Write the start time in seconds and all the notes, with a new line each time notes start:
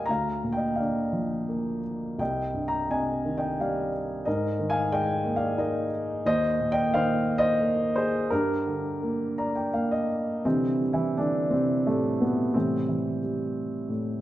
Already playing: D#2 G3 A#4 D5 D#5 F5 G5 G#5
0.06 D2 A#5
0.10 F5
0.44 A#2
0.52 G5
0.57 D#5
0.76 D3 D5 F5
1.13 F3
1.48 A#3
2.18 C2 D#5 G5
2.54 G2
2.68 G5 A#5
2.90 C3 D#5 G#5
3.25 D#3
3.38 D#5 G5
3.60 G3 D5 F5
4.25 G#2 A#4 D#5
4.59 D#3
4.70 F5 G#5
4.92 G#3 D#5 G5
5.24 A#3
5.36 D5 F5
5.58 D#4 A#4 D#5
6.25 D#2 C5 D#5
6.60 A#2
6.72 D#5 G5
6.94 D#3 C5 F5
7.38 C5 D#5
7.61 A#3
7.96 G#4 C5
8.30 G2 G4 A#4
8.67 D3
9.03 A#3
9.38 D5 A#5
9.55 G5
9.74 A#3 F5
9.92 D#5
10.45 C3 D3 E3 G3 C4
10.81 G3
10.93 E3 E4
11.17 D3 E3 D4
11.50 C3 C4
11.87 A2 G3 A3
12.21 B2 B3
12.54 A2 C3 E3 G3 C4
12.89 E3
13.23 G3
13.89 A2